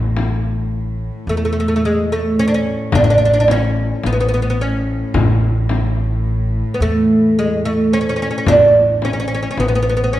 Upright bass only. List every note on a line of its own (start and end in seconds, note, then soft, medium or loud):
0.00 1.09 A1 medium
1.27 2.74 E2 medium
2.93 3.91 A1 medium
4.04 5.02 A1 medium
5.14 6.62 A1 medium
6.80 8.28 E2 medium
8.47 9.45 A1 medium
9.57 10.20 A1 medium